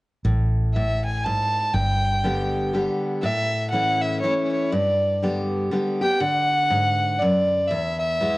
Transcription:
0.25 A1 A2
0.74 A2 E5
1.05 G#5
1.24 G#2 A5
1.73 G1 G2 G5
2.24 D3 G3 B3 G4
2.73 D3 G3 B3 G4
3.22 A2 E5
3.71 E3 A3 C#4 E4 F#5
4.02 E5
4.20 E3 A3 C#5
4.25 C#4 E4
4.52 C#5
4.70 G2 D5
5.22 D3 G3 B3 G4
5.71 D3 G3 B3 G4
6.01 B3 G4 G5
6.20 D3 F#5
6.70 G#2
7.19 F#2 D5
7.68 E2 E5
7.99 E5
8.21 E3 G#3 B3 E4

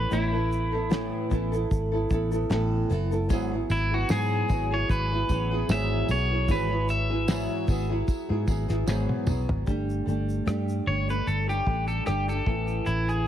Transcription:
Already playing: E4 A4 B4
0.10 A1 A2 E3 B3 E4 A4, shaker
0.32 B3 E4 A4
0.52 shaker
0.72 B3 E4 A4
0.89 A2 E3 B3 E4 A4, snare, shaker
1.30 A1 E3 B3 E4 A4, kick, shaker
1.52 B3 E4 A4, shaker
1.71 G#1, kick, shaker
1.92 B3 E4 A4
2.10 A1 E3 B3 E4 A4, kick, shaker
2.31 B3 E4 A4, shaker
2.50 A1 A2 E3 B3 E4 A4, snare, shaker
2.89 F#1 E3 B3 E4 A4, shaker
3.11 B3 E4 A4, shaker
3.29 G#1 G#2 E3 F#3 B3 E4 G#4, kick, tambourine, shaker
3.51 F#3 B3 E4 G#4
3.70 G#1 E4, tambourine, shaker
3.91 F#3 B3 E4 F#4 G#4
4.09 G#2 E3 F#3 B3 E4 G#4, snare, tambourine, shaker
4.49 G#1 F#3 B3 E4 G#4, kick, tambourine, shaker
4.71 F#3 B3 E4 G#4 C#5
4.89 G#1 B4, kick, shaker
5.11 F#3 B3 E4 G#4
5.29 A1 F#3 B3 E4 G#4, kick, tambourine, shaker
5.51 F#3 B3 E4 G#4
5.69 G#1 G#2 E3 F#3 B3 E4 G#4 E5, snare, tambourine, shaker
6.08 B1 F#3 B3 E4 G#4 C#5, tambourine, shaker
6.30 F#3 B3 E4 G#4
6.48 G#1 G#2 E3 F#3 B3 E4 G#4 B4, kick, tambourine, shaker
6.69 F#3 B3 E4 G#4
6.89 E5, tambourine, shaker
7.10 F#3 B3 E4 G#4
7.27 G#2 E3 F#3 B3 E4 G#4, snare, tambourine, shaker
7.68 G#1 F#3 B3 E4 G#4, kick, tambourine, shaker
7.89 F#3 B3 E4 G#4
8.08 kick, tambourine, shaker
8.29 G#2 F#3 B3 E4 G#4
8.46 G#1 F#3 B3 E4 G#4, kick, tambourine, shaker
8.68 G#1 F#3 B3 E4 G#4, snare, shaker
8.87 G#1 G#2 E3 F#3 B3 E4 G#4, snare, tambourine
9.09 high tom
9.26 B1 F#3 B3 E4 G#4, mid tom, tambourine
9.49 G#1, floor tom
9.66 G1 G3 A3 D4 G4, kick, shaker
9.90 shaker
10.06 G1 G3 A3 D4 G4, shaker
10.29 shaker
10.46 G2 G3 A3 D4 G4, cross-stick, shaker
10.69 shaker
10.86 G1 G3 A3 D4 C#5
11.07 A3 D4 G4 B4, shaker
11.27 G1 A4, shaker
11.47 A3 D4 G4, shaker
11.65 A1 G3 A3 D4 G4, kick
11.88 A4, shaker
12.06 G1 G3 A3 D4 G4, cross-stick, shaker
12.28 A3 D4 G4 A4, shaker
12.46 A1 A2 E3 B3 E4 A4, kick
12.68 shaker
12.86 A1 E4, shaker
13.09 G#4, shaker

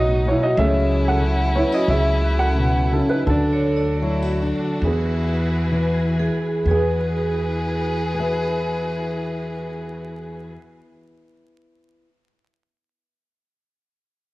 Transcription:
Already playing: B1 A2 F#3 B3 D#4 F#4 D#5
0.26 B2 C#5
0.31 E4
0.43 F#4 D#5
0.56 C#2 C#3 F#3 A3 C#4 E4 G#4 E5 G#5
1.08 A4 F#5
1.21 F#3
1.55 B3 E4 C#5
1.72 C#4 F#4 D#5
1.88 C#2 C#3 G#4 E5
2.24 F#4
2.39 A4 F#5
2.57 B2
2.91 C#3 A4
2.96 C#4
3.09 D#4 B4
3.26 D2 D3 A3 D4 F#4 A4
3.53 C#5
3.76 D5
4.02 F#3 E4
4.22 F#4
4.42 D4
4.81 E2 E3 E4 G#4 B4
4.87 B3
5.72 E3 E4
6.19 E4 G#4
6.66 E2 E3 E4 F#4 G#4 B4
6.71 B3 E4 G#4
6.75 G#4
8.14 B4
8.19 E5

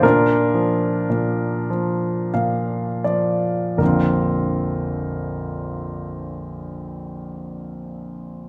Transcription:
0.02 A#2 D4 F4 A#4
0.54 F3
1.10 A#2
1.70 F3
2.34 A#2 F5
3.04 F3 D5
3.77 A#1 F2 D3 A#4
3.82 A#3 C4 F4

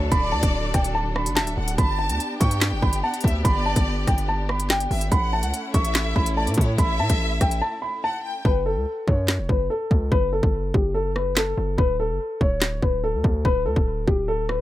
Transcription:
Already playing: D2 D3 F#3 D4 A4 C#5
0.12 D1 D5 B5, kick, closed hi-hat
0.32 D2 A5
0.43 D1, kick, closed hi-hat
0.74 D1 G5, kick, cross-stick, closed hi-hat
0.84 closed hi-hat
0.95 A5
1.16 B5, cross-stick
1.26 F#1, closed hi-hat
1.36 E5 A5, snare, clap
1.42 D1
1.47 closed hi-hat
1.57 D1 F#5
1.68 closed hi-hat
1.78 G1 B3 G4 A5 B5, kick, closed hi-hat
1.99 A5
2.09 D2, closed hi-hat
2.20 closed hi-hat
2.40 G2 G5 C#6, kick, closed hi-hat
2.51 closed hi-hat
2.61 snare, clap
2.72 F#1
2.82 G1 B5, kick
2.93 closed hi-hat
3.03 F#5 A5
3.14 closed hi-hat
3.21 D2 E5, kick, closed hi-hat
3.28 closed hi-hat
3.45 G1 D5 B5, kick, closed hi-hat
3.66 A5
3.76 G1, kick, closed hi-hat
4.07 G1 G5, kick, cross-stick, closed hi-hat
4.18 closed hi-hat
4.29 A5
4.49 B5, cross-stick
4.60 closed hi-hat
4.70 G5, snare, clap
4.80 closed hi-hat
4.91 G1 E5, open hi-hat
5.01 closed hi-hat
5.12 A1 A3 C#4 E4 F#5 B5, kick, closed hi-hat
5.33 A5
5.43 C#2, closed hi-hat
5.54 closed hi-hat
5.74 A1 E5 C#6, kick, closed hi-hat
5.85 closed hi-hat
5.95 snare, clap
6.16 A1 B5, kick
6.26 closed hi-hat
6.37 D5 A5
6.47 A2, closed hi-hat
6.54 A2 C#5, kick, closed hi-hat
6.61 closed hi-hat
6.78 A1 E5 B5, kick, closed hi-hat
6.99 A2 A5
7.10 A1, kick, closed hi-hat
7.41 A1 G5, kick, cross-stick, closed hi-hat
7.51 closed hi-hat
7.62 A5
7.82 B5
8.03 F#5 A5
8.24 G5
8.45 F#1 B4, kick
8.66 A4
8.76 C#2
9.08 F#2 C#5, kick
9.28 snare, clap
9.39 E1
9.49 F#1 B4, kick
9.70 A4
9.91 C#2, kick
10.12 F#1 B4, kick
10.33 A4
10.43 F#1, kick
10.74 F#1 G4, kick
10.94 A4
11.16 B4, cross-stick
11.37 A4, snare, clap
11.58 F#1
11.78 D1 B4, kick
12.00 A4
12.10 F#1
12.41 D1 C#5, kick
12.62 snare, clap
12.82 D1 B4, kick
13.04 A4
13.14 D2
13.24 D2, kick
13.45 D1 B4, kick
13.65 D2 A4
13.76 D1, kick
14.08 D1 G4, kick
14.28 A4
14.49 B4, cross-stick

